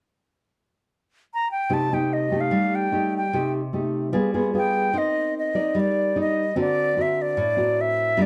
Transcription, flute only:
1.34 A#5
1.51 G5
1.73 A5
1.94 G5
2.13 D#5
2.41 F5
2.75 G5
3.17 G5
4.57 G5
4.98 D#5
5.38 D#5
5.80 D5
6.21 D#5
6.61 D5
7.01 E5
7.22 D5
7.81 E5
8.22 D5

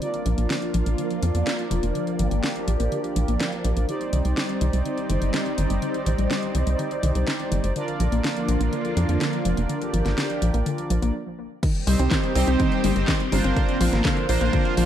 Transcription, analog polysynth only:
0.02 D4 F4 A#4 D5
3.89 D#4 G4 C5 D5
7.76 D4 F4 A#4 D5
11.87 C4 D#4 G4 C5
12.35 C4 D#4 G4 C5
12.84 C4 D#4 G4 C5
12.96 C4 D#4 G4 C5
13.32 D4 F4 A#4 C5
13.81 D4 F4 A#4 C5
14.29 D4 F4 A#4 C5
14.77 D4 F4 A#4 C5

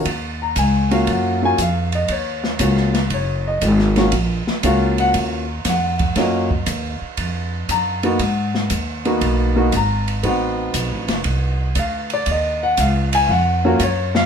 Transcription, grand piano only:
0.42 A#5
0.59 G#5
0.91 A#3 C#4 F4 F#4 F5
1.11 F#5
1.43 A#3 C#4 F4 F#4 G#5
1.62 F5
1.95 D#5
2.12 C#5
2.60 A#3 C#4 F4 F#4
3.14 C#5
3.48 D#5
3.97 A#3 C#4 F4 F#4
4.64 A#3 C#4 F4 F#4 F5
5.00 F#5
5.69 F#5
6.17 A#3 C#4 F4 F#4 D#5
7.71 A#5
8.03 A#3 B3 D#4 F#4
8.20 F#5
9.05 A#3 B3 D#4 F#4
9.56 A#3 B3 D#4 F#4
9.76 A#5
10.23 B3 C4 D#4 F#4 F#5
11.79 F5
12.14 D5
12.31 D#5
12.63 F#5
12.80 F5
13.15 G#5
13.27 F5 F#5
13.65 A#3 C#4 F4 F#4 A#4
13.84 C#5
14.16 F5

